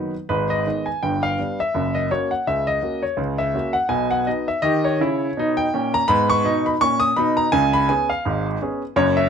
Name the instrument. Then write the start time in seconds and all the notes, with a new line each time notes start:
grand piano
Already playing: D#3 F#3 B3 D#4 F#4 B4
0.29 G#1 G#2 B4
0.50 D#5
0.66 D#3 G#3 B3
0.86 G#5
1.03 G1 G2 G5
1.23 F5
1.38 G3 B3 D4
1.60 E5
1.74 F#1 F#2
1.95 D#5
2.11 A#3 C#4 F#4 C#5
2.31 F#5
2.47 C#2 C#3 E5
2.67 D#5
2.82 A#3 C#4 F#4
3.02 C#5
3.17 C#2 C#3
3.38 E5
3.54 A#3 C#4 F#4
3.73 F#5
3.89 B1 B2 G#5
4.11 F#5
4.27 B3 D#4 F#4 D#5
4.48 E5
4.62 D#3 G4 D#5
4.84 C#5
5.00 C#3 E4
5.37 B2 D#4
5.57 G5
5.74 A#2 C#4
5.94 A#5
6.08 G#2 B3 B5
6.30 C#6
6.44 B2 D#4
6.66 B5
6.81 A#2 C#4 C#6
7.00 D#6
7.17 B2 D#4 B5
7.37 A#5
7.52 C#2 C#3 G#5
7.73 B5
7.89 B3 C#4 G#4 G#5
8.10 F5
8.25 G#1 G#2
8.62 B3 C#4 G#4
8.96 F#1 F#2 C#5
9.17 E5